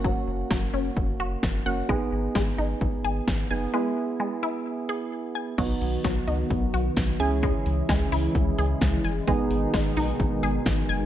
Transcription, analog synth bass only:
\new Staff \with { instrumentName = "Analog synth bass" } { \clef bass \time 4/4 \key gis \minor \tempo 4 = 130 fis,,8 fis,,8 fis,,8 fis,,8 fis,,8 fis,,8 fis,,8 fis,,8 | gis,,8 gis,,8 gis,,8 gis,,8 gis,,8 gis,,8 gis,,8 fis,,8 | r1 | b,,8 b,,8 b,,8 cis,8 b,,8 b,,8 b,,8 cis,8~ |
cis,8 cis,8 cis,8 cis,8 cis,8 cis,8 cis,8 fis,,8 | gis,,8 gis,,8 gis,,8 ais,,8 gis,,8 gis,,8 gis,,8 fis,,8 | }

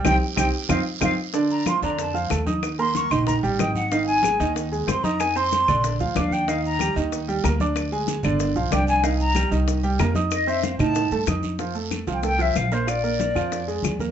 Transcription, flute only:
\new Staff \with { instrumentName = "Flute" } { \time 4/4 \key c \mixolydian \tempo 4 = 187 g''8 r8 g''8 r8 f''8 r8 f''8 r8 | \key c \dorian r8 bes''8 c'''8 bes''8 a''8 r4. | r8 c'''8 des'''8 c'''8 bes''8 r8 g''8 ges''8 | f''8 aes''4. r4 c'''8 bes''8 |
aes''8 c'''4. r4 f''8 g''8 | f''8 bes''4 r2 r8 | r2. g''8 aes''8 | f''8 bes''4 r2 r8 |
ees''8 e''8 f''8 a''4. r4 | \key f \major r4 \tuplet 3/2 { r4 g''8 } g''8 e''8 f''8 c''8 | d''2.~ d''8 r8 | }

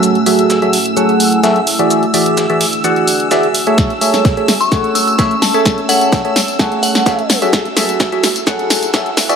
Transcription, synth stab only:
\new Staff \with { instrumentName = "Synth stab" } { \time 4/4 \key fis \minor \tempo 4 = 128 <fis fis' gis' a' e''>16 r16 <fis fis' gis' a' e''>8. <fis fis' gis' a' e''>16 r8 <fis fis' gis' a' fis''>4 <fis fis' gis' a' e''>16 r8 <e fis' gis' d'' e''>16~ | <e fis' gis' d'' e''>16 r16 <e fis' gis' d'' e''>8. <e fis' gis' d'' e''>16 r8 <e fis' gis' d'' fis''>4 <e fis' gis' d'' e''>16 r8 <a gis' a' cis'' e''>16~ | <a gis' a' cis'' e''>16 r16 <a gis' a' cis'' e''>8. <a gis' a' cis'' e''>16 r8 <a gis' a' cis'' fis''>4 <a gis' a' cis'' e''>16 r8 <a gis' a' cis'' e''>16~ | <a gis' a' cis'' e''>16 r16 <a gis' a' cis'' e''>8. <a gis' a' cis'' e''>16 r8 <a gis' a' cis'' fis''>4 <a gis' a' cis'' e''>16 r8 <fis fis' gis' a' e''>16~ |
<fis fis' gis' a' e''>16 r16 <fis fis' gis' a' e''>8. <fis fis' gis' a' e''>16 r8 <fis fis' gis' a' fis''>4 <fis fis' gis' a' e''>16 r8 <e fis' gis' d'' e''>16 | }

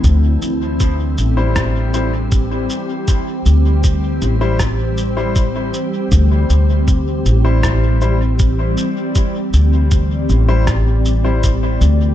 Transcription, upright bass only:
\new Staff \with { instrumentName = "Upright bass" } { \clef bass \time 4/4 \key c \major \tempo 4 = 79 d,8 d,4 a,,2 r8 | r8 d,4 a,,2 r8 | d,8 d,4 a,,2 r8 | r8 d,4 a,,2 d,8 | }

